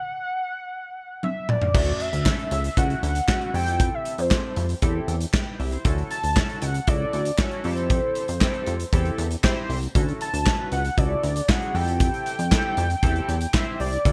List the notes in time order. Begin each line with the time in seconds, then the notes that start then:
Already playing: F#5
1.23 E5, high tom
1.49 D5, mid tom
1.62 floor tom
1.74 D2 A3 C#4 E4 F#4, kick, crash
2.00 E5, closed hi-hat
2.13 D2, closed hi-hat
2.26 A3 C#4 E4 A4, kick, snare, clap
2.39 closed hi-hat
2.51 C#2 E5, closed hi-hat
2.64 closed hi-hat
2.77 C#2 A3 C#4 E4 F#4 F#5, kick, closed hi-hat
2.90 closed hi-hat
3.03 D2, closed hi-hat
3.15 closed hi-hat
3.28 A3 C#4 E4 F#4, kick, snare, clap
3.42 closed hi-hat
3.54 F2 C4 E4 G4 A4 G5, open hi-hat
3.67 closed hi-hat
3.80 kick, closed hi-hat
3.94 E5
4.05 closed hi-hat
4.18 F2 C5, closed hi-hat
4.31 C4 E4 G4 A4, kick, snare, clap
4.56 F2, closed hi-hat
4.69 closed hi-hat
4.82 E2 C4 E4 G4 A4, kick, closed hi-hat
5.08 E2, closed hi-hat
5.21 closed hi-hat
5.33 B4 G5, kick, snare, clap
5.59 C2 G4 E5, open hi-hat
5.72 E4 C5, closed hi-hat
5.84 D2 C#4 E4 F#4 A4, kick, closed hi-hat
5.98 closed hi-hat
6.11 A5, closed hi-hat
6.23 D2, closed hi-hat
6.36 C#4 E4 F#4 A4, kick, snare, clap
6.49 closed hi-hat
6.62 C#2 F#5, closed hi-hat
6.74 closed hi-hat
6.87 C#2 C#3 E4 F#4 A4 D5, kick, closed hi-hat
7.13 D2, closed hi-hat
7.25 closed hi-hat
7.38 C#4 E4 F#4 A4 C#5, kick, snare, clap
7.51 closed hi-hat
7.64 F2 C4 E4 G4 A4 C5, open hi-hat
7.77 closed hi-hat
7.90 kick, closed hi-hat
8.15 closed hi-hat
8.28 F2, closed hi-hat
8.41 C4 E4 G4 A4, kick, snare, clap
8.54 closed hi-hat
8.66 F2, closed hi-hat
8.80 closed hi-hat
8.92 E2 C4 E4 G4 A4, kick, closed hi-hat
9.05 closed hi-hat
9.18 E2, closed hi-hat
9.31 closed hi-hat
9.43 C4 E4 G4 C5, kick, snare, clap
9.70 C2, open hi-hat
9.83 closed hi-hat
9.95 D2 C#4 E4 F#4 A4, kick, closed hi-hat
10.09 closed hi-hat
10.21 A5, closed hi-hat
10.34 D2, closed hi-hat
10.46 C#4 E4 F#4 B4, kick, snare, clap
10.72 C#2 F#5, closed hi-hat
10.85 closed hi-hat
10.97 C#2 C#3 E4 F#4 A4 D5, kick, closed hi-hat
11.23 D2, closed hi-hat
11.36 closed hi-hat
11.49 C#4 E4 F#4 G#4 F#5, kick, snare, clap
11.62 closed hi-hat
11.75 F2 C4 E4 G4 A4 G5, open hi-hat
11.88 closed hi-hat
12.00 kick, closed hi-hat
12.14 closed hi-hat
12.26 closed hi-hat
12.39 F2, closed hi-hat
12.52 C4 E4 G4 A4, kick, snare, clap
12.77 F2, closed hi-hat
12.90 closed hi-hat
13.03 E2 C4 E4 G4 A4, kick, closed hi-hat
13.16 closed hi-hat
13.29 E2, closed hi-hat
13.41 closed hi-hat
13.54 C4 E4 G4 C5 E5, kick, snare, clap
13.80 C2 D5, open hi-hat
13.93 closed hi-hat
14.05 D2 C#4 E4 F#4 A4, kick, closed hi-hat